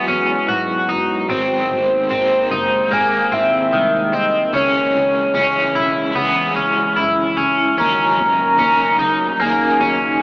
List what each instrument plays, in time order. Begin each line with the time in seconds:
Already playing: ambient pad F#3 G#3 B3 F#4, overdriven electric guitar F#3 B3 E4 G#4
0.08 double bass E2, clean electric guitar C#4
0.48 double bass G#2, clean electric guitar F#4
0.88 double bass F#1, clean electric guitar D#4
1.28 double bass G#1, overdriven electric guitar G#2 D#3 G#3 C4 D#4, ambient pad C3 D#3 A#3, clean electric guitar C4, soft synth lead C5
1.32 overdriven electric guitar A#4
1.70 double bass G#1
2.09 double bass G#1, overdriven electric guitar G#3 C4 D#4, clean electric guitar C4
2.14 overdriven electric guitar A#4
2.50 double bass F#1, clean electric guitar D#4
2.88 double bass G#1, overdriven electric guitar G#3, clean electric guitar A#3
2.93 overdriven electric guitar C4, soft synth lead G#5
3.00 overdriven electric guitar A#4
3.32 double bass G#1, clean electric guitar C4, soft synth lead E5
3.73 double bass C2, clean electric guitar D#3
4.13 double bass C2, clean electric guitar C4, soft synth lead D#5
4.53 double bass C#2, overdriven electric guitar C#3 G#3 C#4 E4, ambient pad C#3 E3 G#3 E4, clean electric guitar C#4, soft synth lead C#5
4.57 overdriven electric guitar G#4
4.94 double bass C#2
5.34 double bass C#2, overdriven electric guitar G#3 C#4 E4, clean electric guitar C#4
5.39 overdriven electric guitar G#4
5.75 double bass B1, clean electric guitar E4
6.12 double bass C#2, overdriven electric guitar G#3, clean electric guitar B3
6.17 overdriven electric guitar C#4 E4
6.25 overdriven electric guitar G#4
6.56 double bass C#2, clean electric guitar C#4
6.96 double bass F#2, clean electric guitar E4
7.37 double bass C#2, clean electric guitar C#4
7.77 double bass D#2, ambient pad C#3 F#3 A#3 D#4, overdriven electric guitar D#3 F#3 C#4 D#4, clean electric guitar C#4, soft synth lead A#5
7.81 overdriven electric guitar A#4
8.18 double bass D#2
8.58 double bass D#2, overdriven electric guitar F#3 C#4 D#4, clean electric guitar C#4
8.63 overdriven electric guitar A#4
8.99 double bass C#2, clean electric guitar D#4
9.36 double bass D#2, overdriven electric guitar F#3, clean electric guitar A#3
9.41 overdriven electric guitar C#4 D#4, soft synth lead G#5
9.49 overdriven electric guitar A#4
9.80 double bass D#2, clean electric guitar C#4